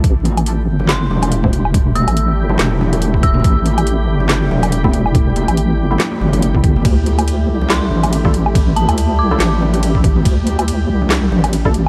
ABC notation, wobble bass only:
X:1
M:4/4
L:1/16
Q:"Swing 16ths" 1/4=141
K:Am
V:1 name="Wobble bass" clef=bass
A,,,6 G,,,4 E,,,6- | E,,,3 A,,,3 G,,,2 E,,,8 | A,,,6 G,,,4 E,,,6- | E,,,3 A,,,3 G,,,2 z2 G,,,6 |
D,,6 C,,4 A,,,6- | A,,,3 D,,3 C,,2 A,,,8 | D,,6 C,,4 A,,,6 |]